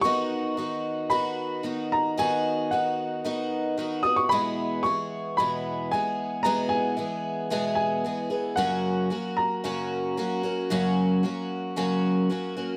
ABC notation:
X:1
M:4/4
L:1/16
Q:1/4=112
K:B
V:1 name="Upright piano"
c'8 b4 z2 a2 | g4 f8- f2 d' c' | b4 c'4 b4 g4 | a2 g8 g6 |
f6 a8- a2- | a12 z4 |]
V:2 name="Twelve-string acoustic guitar"
[D,B,DF]4 [D,B,DF]4 [D,B,DF]4 [D,B,DF]4 | [D,B,DF]4 [D,B,DF]4 [D,B,DF]4 [D,B,DF]2 [B,DF]2 | [E,,B,,E,G,B,G]4 [E,G,B,G]4 [E,,B,,E,G,B,G]4 [E,G,B,G]4 | [E,,B,,E,G,B,G]4 [E,G,B,G]4 [E,,B,,E,G,B,G]4 [E,G,B,G]2 [E,G,B,G]2 |
[F,,C,F,A,CF]4 [F,A,CF]4 [F,,C,F,A,CF]4 [F,A,CF]2 [F,A,CF]2 | [F,,C,F,A,CF]4 [F,A,CF]4 [F,,C,F,A,CF]4 [F,A,CF]2 [F,A,CF]2 |]